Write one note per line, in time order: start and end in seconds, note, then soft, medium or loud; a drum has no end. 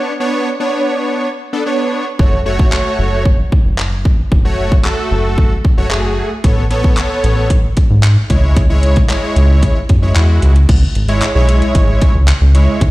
0.00 0.12 B3 medium
0.00 0.12 D4 medium
0.00 0.12 C#5 medium
0.20 0.49 B3 medium
0.20 0.49 D4 medium
0.20 0.49 C#5 loud
0.60 1.28 B3 medium
0.60 1.28 D4 medium
0.60 1.28 C#5 loud
1.53 1.63 B3 medium
1.53 1.63 D4 medium
1.53 1.63 A4 loud
1.66 2.05 B3 medium
1.66 2.05 D4 medium
1.66 2.05 C#5 medium
2.19 2.73 F#1 loud
2.19 2.39 A3 medium
2.19 2.39 F#4 medium
2.19 2.39 C#5 medium
2.19 kick loud
2.46 3.23 A3 medium
2.46 3.23 F#4 medium
2.46 3.24 C#5 loud
2.59 kick medium
2.72 clap loud
2.99 3.44 F#1 loud
3.25 kick medium
3.52 kick medium
3.65 4.10 F#1 medium
3.78 clap loud
4.05 kick medium
4.32 4.85 F#1 loud
4.32 kick loud
4.45 4.74 A3 medium
4.45 4.74 F#4 medium
4.45 4.74 C#5 loud
4.72 kick medium
4.85 5.53 A3 medium
4.85 5.53 F#4 medium
4.85 5.53 A4 loud
4.85 clap loud
5.11 5.56 F#1 loud
5.38 kick medium
5.65 kick medium
5.78 6.23 F#1 medium
5.78 5.87 A3 medium
5.78 5.88 F#4 medium
5.78 5.88 C#5 loud
5.91 6.30 A3 medium
5.91 6.30 F#4 medium
5.91 6.30 G#4 medium
5.91 clap loud
6.44 6.98 A1 loud
6.44 6.63 B3 medium
6.44 6.64 A4 medium
6.44 6.64 C#5 medium
6.44 kick loud
6.44 closed hi-hat medium
6.71 7.48 B3 medium
6.71 7.48 A4 medium
6.71 7.48 C#5 loud
6.71 closed hi-hat medium
6.84 kick loud
6.97 clap loud
6.97 closed hi-hat medium
7.24 7.69 A1 loud
7.24 closed hi-hat medium
7.50 kick medium
7.50 closed hi-hat medium
7.77 kick medium
7.77 closed hi-hat medium
7.90 8.17 G#2 medium
8.03 clap loud
8.03 closed hi-hat medium
8.30 9.02 C#2 loud
8.30 8.62 G#3 medium
8.30 8.62 E4 medium
8.30 8.62 C#5 loud
8.30 kick medium
8.30 closed hi-hat medium
8.56 kick loud
8.56 closed hi-hat medium
8.70 8.99 G#3 medium
8.70 8.99 E4 medium
8.70 8.99 C#5 loud
8.83 closed hi-hat medium
8.96 kick medium
8.96 closed hi-hat soft
9.09 9.77 G#3 medium
9.09 9.77 E4 medium
9.09 9.78 C#5 loud
9.09 clap loud
9.09 closed hi-hat medium
9.36 9.72 C#2 loud
9.36 closed hi-hat medium
9.63 kick medium
9.63 closed hi-hat medium
9.89 10.13 F#2 medium
9.89 kick medium
9.89 closed hi-hat medium
10.02 10.12 G#3 medium
10.02 10.12 E4 medium
10.02 10.12 C#5 loud
10.16 10.40 E2 medium
10.16 10.54 G#3 medium
10.16 10.55 E4 medium
10.16 10.55 F#4 medium
10.16 clap loud
10.16 closed hi-hat medium
10.42 10.66 C#2 medium
10.42 closed hi-hat medium
10.56 closed hi-hat medium
10.69 10.87 C#2 loud
10.69 kick loud
10.69 closed hi-hat medium
10.69 crash medium
10.95 11.22 G#1 loud
10.95 closed hi-hat medium
11.08 11.28 G#3 medium
11.08 11.28 E4 medium
11.08 11.28 C#5 loud
11.08 closed hi-hat soft
11.22 clap loud
11.22 closed hi-hat medium
11.35 11.62 B1 medium
11.35 12.13 G#3 medium
11.35 12.13 E4 medium
11.35 12.13 C#5 loud
11.49 closed hi-hat medium
11.62 closed hi-hat soft
11.75 12.02 G#1 loud
11.75 kick medium
11.75 closed hi-hat medium
12.01 kick medium
12.01 closed hi-hat medium
12.15 12.33 C#2 medium
12.28 clap loud
12.28 closed hi-hat loud
12.41 12.68 C#2 medium
12.55 12.81 G#3 medium
12.55 12.81 E4 medium
12.55 12.81 C#5 medium
12.55 closed hi-hat medium
12.81 12.91 D2 loud
12.81 kick loud
12.81 closed hi-hat medium